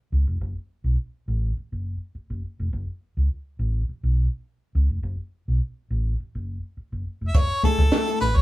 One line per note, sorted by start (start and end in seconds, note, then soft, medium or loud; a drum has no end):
0.12 0.24 C#2 medium
0.27 0.38 F1 medium
0.41 0.53 F#1 medium
0.84 0.95 B1 medium
1.28 1.50 A1 medium
1.57 muted fingered electric bass stroke soft
1.72 1.95 F#1 medium
2.15 muted fingered electric bass stroke soft
2.30 2.40 F#1 medium
2.59 2.70 F1 medium
2.73 2.84 F#1 loud
3.17 3.27 C#2 medium
3.59 3.82 A1 medium
3.89 muted fingered electric bass stroke soft
4.03 4.26 B1 medium
4.75 4.87 C#2 medium
4.89 5.00 F1 medium
5.03 5.15 F#1 loud
5.48 5.58 B1 medium
5.91 6.13 A1 medium
6.20 muted fingered electric bass stroke soft
6.35 6.57 F#1 medium
6.77 muted fingered electric bass stroke soft
6.92 7.03 F#1 medium
7.21 7.32 F1 medium
7.28 7.38 E5 medium
7.34 7.47 F#1 loud
7.34 7.64 C#5 loud
7.34 kick loud
7.34 closed hi-hat loud
7.63 7.81 A3 medium
7.63 7.81 E4 medium
7.63 7.82 G#4 medium
7.63 8.18 A4 loud
7.63 kick medium
7.63 closed hi-hat medium
7.79 7.89 C#2 medium
7.79 kick medium
7.92 8.07 A3 medium
7.92 8.07 E4 medium
7.92 8.06 A4 medium
7.92 snare loud
7.92 closed hi-hat medium
8.07 8.25 A3 medium
8.07 8.24 E4 medium
8.07 8.24 A4 medium
8.07 closed hi-hat medium
8.20 8.42 A1 loud
8.20 8.38 B4 loud
8.20 snare soft
8.20 closed hi-hat medium
8.36 8.42 C#5 loud
8.36 kick loud